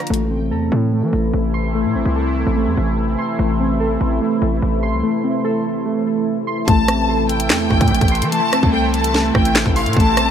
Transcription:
Already playing: synth keys D4 D5 A#5
0.07 808-style bass A1, analog synth pad C3 E3 A3 E4, synth keys A3, closed hi-hat
0.14 closed hi-hat
0.31 synth keys C4
0.51 808-style bass E2, synth keys A4
0.72 808-style bass A2
0.93 synth keys A3
1.03 808-style bass E3
1.13 808-style bass A1
1.33 808-style bass A1
1.54 synth keys C6
1.75 synth keys A3
1.85 808-style bass A2
1.95 808-style bass A1, synth keys C4
2.05 808-style bass C2
2.16 synth keys A4
2.47 808-style bass A1
2.57 synth keys A3
2.67 808-style bass E2
2.77 808-style bass A1
3.19 synth keys C6
3.39 808-style bass A1, synth keys A3
3.60 synth keys C4
3.80 synth keys A4
4.01 808-style bass A1
4.21 synth keys A3
4.42 808-style bass A1
4.62 808-style bass A1
4.83 synth keys C6
4.93 808-style bass C2
5.03 synth keys A3
5.24 synth keys C4
5.45 synth keys A4
5.86 synth keys A3
6.47 synth keys C6
6.68 808-style bass A1, analog synth pad C3 E3 A3 E4, synth keys A3, violin section A5, kick, closed hi-hat
6.88 synth keys C4, cross-stick, closed hi-hat
7.09 synth keys A4
7.29 violin section G5, closed hi-hat
7.40 closed hi-hat
7.50 808-style bass E2, synth keys A3, snare, clap
7.71 808-style bass A1, kick
7.81 808-style bass A2, kick, closed hi-hat
7.88 808-style bass A1, closed hi-hat
7.95 closed hi-hat
8.01 808-style bass A1, kick, closed hi-hat
8.08 synth keys C6, closed hi-hat
8.15 closed hi-hat
8.22 808-style bass E3, closed hi-hat
8.32 synth keys A3, violin section A5, closed hi-hat
8.53 synth keys C4, cross-stick, closed hi-hat
8.63 808-style bass C2, kick
8.73 synth keys A4, violin section G5
8.94 violin section A5, closed hi-hat
9.04 closed hi-hat
9.14 synth keys A3, snare
9.35 808-style bass A1, violin section G5, kick, cross-stick
9.45 closed hi-hat
9.55 snare, clap, closed hi-hat
9.66 808-style bass A1, kick
9.76 violin section F5, synth keys C6, open hi-hat
9.86 808-style bass A2, closed hi-hat
9.93 808-style bass A1, analog synth pad G3, synth keys A3, violin section A5, kick, closed hi-hat
10.00 closed hi-hat
10.17 synth keys C4, cross-stick, closed hi-hat

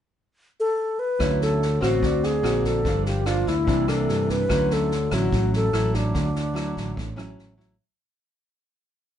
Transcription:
0.60 alto flute A4
0.99 alto flute B4
1.19 fingered electric bass D2, nylon-string guitar D3 F#3 C#4 E4, tine electric piano F#4 C#5, kick, cross-stick, snare
1.24 tine electric piano E5
1.41 alto flute A4, snare
1.62 snare
1.81 fingered electric bass A1, nylon-string guitar A#3 C4 F#4, alto flute F#4, kick, cross-stick, snare
2.00 fingered electric bass D2, nylon-string guitar D3, tine electric piano C4 F#4, kick, snare
2.04 tine electric piano A#4 D5
2.23 alto flute G#4, snare
2.43 fingered electric bass A#1, nylon-string guitar A#3 C4 F#4, cross-stick, snare
2.64 alto flute A4, kick, snare
2.82 fingered electric bass G1, nylon-string guitar G2 F3 A#3 D4, tine electric piano D4 G4 A#4, kick, snare
2.88 tine electric piano F5
3.06 alto flute G4, snare
3.26 nylon-string guitar F3 A#3 D4, alto flute F4, cross-stick, snare
3.47 fingered electric bass D2, alto flute E4, kick, snare
3.65 fingered electric bass C2, nylon-string guitar C3 E3 A#3 D4, tine electric piano A#3 D4 C5, kick, snare
3.70 tine electric piano E5
3.88 nylon-string guitar E3 A#3 D4, alto flute A4, cross-stick, snare
4.09 fingered electric bass G2, snare
4.29 alto flute B4, kick, snare
4.49 fingered electric bass D2, nylon-string guitar D3 F#3 C#4 E4, tine electric piano F#4 C#5, kick, cross-stick, snare
4.53 tine electric piano E5
4.70 alto flute A4, snare
4.91 snare
5.11 fingered electric bass A1, nylon-string guitar F#3 C#4 E4, alto flute F#4, kick, cross-stick, snare
5.32 fingered electric bass A1, nylon-string guitar A2, kick, snare
5.53 alto flute A4, snare
5.73 fingered electric bass A1, nylon-string guitar F#3 E4, cross-stick, snare
5.94 alto flute D4, kick, snare
6.14 fingered electric bass D2, nylon-string guitar D3, kick, snare
6.35 snare
6.54 nylon-string guitar F#3 E4, cross-stick, snare
6.77 fingered electric bass A1, kick, snare
6.96 fingered electric bass A1, nylon-string guitar A2, kick, snare
7.16 nylon-string guitar F#3 C#4 E4, tine electric piano F#4 C#5 E5, cross-stick, snare
7.39 snare
7.57 nylon-string guitar F#3 C#4 E4, kick, snare

